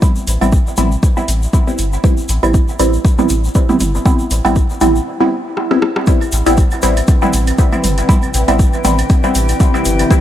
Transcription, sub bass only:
0.27 0.37 A1 loud
0.41 0.58 A1 medium
0.78 0.96 A1 loud
1.28 1.47 A1 medium
1.79 1.97 G1 medium
2.29 2.39 A1 loud
2.43 2.60 A1 medium
2.79 2.98 A1 loud
3.30 3.48 A1 medium
3.80 3.99 G1 medium
4.31 4.41 A1 loud
4.45 4.62 A1 medium
4.81 5.00 A1 loud
6.33 6.42 A1 loud
6.47 6.63 A1 medium
6.83 7.01 A1 medium
7.33 7.52 A1 medium
7.84 8.02 G1 medium
8.34 8.44 A1 loud
8.48 8.65 A1 medium
8.85 9.03 A1 loud
9.35 9.54 A1 medium
9.85 10.04 G1 medium

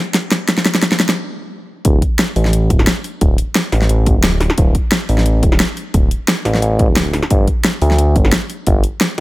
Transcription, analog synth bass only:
1.85 2.01 D1 loud
2.36 2.72 A1 medium
2.70 2.86 D1 medium
3.21 3.37 D1 loud
3.72 3.89 A1 medium
3.90 4.17 A1 loud
4.16 4.48 D1 medium
4.58 4.73 D1 loud
5.09 5.45 A1 medium
5.43 5.59 D1 medium
5.94 6.10 D1 loud
6.45 6.61 A1 medium
6.62 6.90 A1 loud
6.89 7.21 D1 medium
7.31 7.46 G1 loud
7.82 8.17 D2 medium
8.16 8.31 G1 medium
8.67 8.82 G1 loud

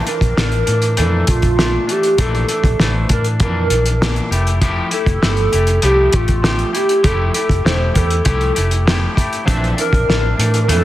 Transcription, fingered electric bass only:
0.21 0.34 A#1 medium
0.37 0.61 A1 medium
0.68 1.00 A2 medium
0.98 1.22 F2 medium
1.28 1.76 A#1 medium
2.18 2.43 A#1 medium
2.63 2.76 A#1 medium
2.79 3.04 A1 medium
3.09 3.42 A2 medium
3.40 3.72 F2 medium
3.70 4.19 A#1 medium
4.31 4.80 F1 medium
5.07 5.19 F1 medium
5.23 5.47 G1 medium
5.53 5.77 F1 medium
5.83 6.07 C2 medium
6.14 6.62 A1 medium
7.04 7.29 F1 medium
7.49 7.62 F1 medium
7.65 7.89 E1 medium
7.95 8.20 E2 medium
8.26 8.50 C2 medium
8.57 9.06 F1 medium
9.48 9.72 A#1 medium
9.92 10.05 A#1 medium
10.08 10.32 A1 medium
10.38 10.70 A2 medium
10.68 10.84 F2 medium

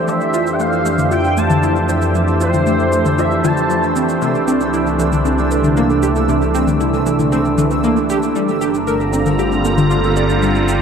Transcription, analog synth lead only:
0.08 0.54 E5 loud
0.53 0.62 G5 medium
0.60 1.11 F5 loud
1.12 1.39 G5 loud
1.37 1.89 A5 loud
2.41 3.20 C5 medium
3.18 3.46 E5 loud
3.44 4.22 A5 loud

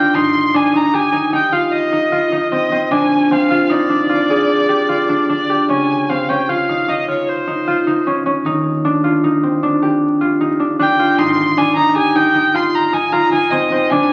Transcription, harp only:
0.00 1.40 C4 medium
0.00 0.21 D4 medium
0.00 1.52 F4 medium
0.00 0.93 G4 medium
0.15 0.60 D#4 medium
0.54 0.80 D4 medium
0.74 1.12 D#4 medium
0.93 3.29 G4 medium
1.12 1.32 D#4 medium
1.33 1.92 D#4 medium
1.52 2.12 F4 medium
1.92 2.32 D#4 medium
2.12 3.50 F4 medium
2.32 2.97 D#4 medium
2.52 2.71 C4 medium
2.72 3.31 C4 medium
2.91 3.76 D4 medium
3.31 5.76 C4 medium
3.50 4.09 F4 medium
3.70 3.96 D#4 medium
3.90 5.08 D4 medium
4.09 4.88 F4 medium
4.30 4.75 G#4 medium
4.69 5.49 G4 medium
4.89 6.48 F4 medium
5.09 5.29 D4 medium
5.29 5.76 D4 medium
5.50 7.85 G4 medium
5.70 6.15 C#4 medium
6.09 6.35 C4 medium
6.29 8.06 C#4 medium
6.49 7.08 F4 medium
6.69 6.88 D#4 medium
6.88 7.47 D#4 medium
7.08 7.67 F4 medium
7.47 7.87 D#4 medium
7.68 9.03 F4 medium
7.87 8.45 D#4 medium
8.07 8.25 C#4 medium
8.26 8.91 C#4 medium
8.46 8.91 D#4 medium
8.85 9.30 D4 medium
9.04 10.20 F4 medium
9.24 9.69 D#4 medium
9.43 12.43 C4 medium
9.63 10.47 D4 medium
9.82 11.95 G4 medium
10.21 10.99 F4 medium
10.41 10.66 D#4 medium
10.60 10.79 D4 medium
10.79 11.25 D4 medium
10.99 12.54 F4 medium
11.19 11.63 D#4 loud
11.57 11.83 D4 medium
11.77 12.15 D#4 medium
11.96 14.13 G4 medium
12.15 12.34 D#4 medium
12.34 12.92 D#4 medium
12.54 13.12 F4 medium
12.93 13.32 D#4 medium
13.13 14.13 F4 medium
13.32 13.98 D#4 medium
13.52 13.71 C4 medium
13.72 14.13 C4 medium
13.92 14.13 D4 loud

